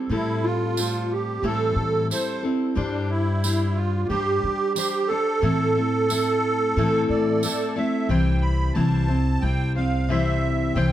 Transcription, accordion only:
0.12 0.45 E4 medium
0.44 1.12 F4 medium
1.12 1.46 G4 medium
1.45 2.07 A4 loud
2.13 2.43 C5 medium
2.76 3.11 D4 medium
3.10 3.79 E4 medium
3.75 4.07 F4 medium
4.08 4.73 G4 loud
4.74 5.10 G4 medium
5.08 7.71 A4 loud
7.10 7.78 D5 medium
7.76 8.10 E5 medium
8.09 8.43 G5 medium
8.42 8.73 B5 medium
8.73 9.43 A5 medium
9.41 9.73 G5 medium
9.76 10.10 F5 medium
10.09 10.77 E5 medium
10.75 10.92 G5 medium

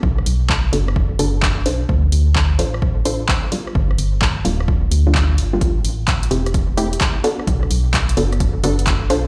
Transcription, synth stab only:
0.00 0.71 B3 medium
0.00 0.71 D4 medium
0.00 0.71 F#4 medium
0.00 0.71 A4 medium
0.73 1.17 B3 medium
0.73 1.17 D4 medium
0.73 1.17 F#4 medium
0.73 1.17 A4 medium
1.19 1.32 B3 medium
1.19 1.32 D4 medium
1.19 1.32 F#4 medium
1.19 1.32 A4 loud
1.66 2.57 D4 medium
1.66 2.57 F4 medium
1.66 2.57 A4 medium
1.66 2.57 C5 medium
2.59 3.04 D4 medium
2.59 3.04 F4 medium
2.59 3.04 A4 medium
2.59 3.04 C5 medium
3.05 3.18 D4 medium
3.05 3.18 F4 medium
3.05 3.18 A4 medium
3.05 3.18 C5 loud
3.52 4.43 G3 medium
3.52 4.43 A#3 medium
3.52 4.43 D4 medium
3.52 4.43 F4 medium
4.45 4.89 G3 medium
4.45 4.90 A#3 medium
4.45 4.90 D4 medium
4.45 4.89 F4 medium
5.07 5.19 G3 medium
5.07 5.19 A#3 medium
5.07 5.19 D4 medium
5.07 5.19 F4 medium
5.53 5.60 G3 medium
5.53 5.60 A#3 medium
5.53 5.60 D4 medium
5.53 5.60 F4 loud
6.31 6.76 A3 medium
6.31 6.76 C4 medium
6.31 6.76 E4 medium
6.31 6.76 G4 medium
6.77 6.90 A3 medium
6.77 6.90 C4 medium
6.77 6.90 E4 medium
6.77 6.90 G4 loud
7.24 8.15 B3 medium
7.24 8.15 D4 medium
7.24 8.15 F#4 medium
7.24 8.15 A4 medium
8.17 8.62 B3 medium
8.17 8.62 D4 medium
8.17 8.62 F#4 medium
8.17 8.62 A4 medium
8.64 8.76 B3 loud
8.64 8.76 D4 medium
8.64 8.76 F#4 medium
8.64 8.76 A4 loud
9.10 9.27 D4 medium
9.10 9.27 F4 medium
9.10 9.27 A4 medium
9.10 9.27 C5 medium

